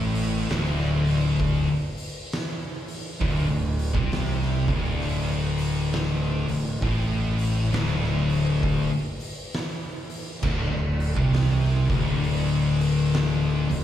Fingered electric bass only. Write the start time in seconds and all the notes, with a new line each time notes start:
Already playing: A1
0.50 D1
3.21 D1
3.50 D1
3.94 C2
4.68 D1
6.49 D1
6.83 A1
7.72 D1
10.43 D1
10.71 D1
11.17 C2
11.90 D1
13.71 D1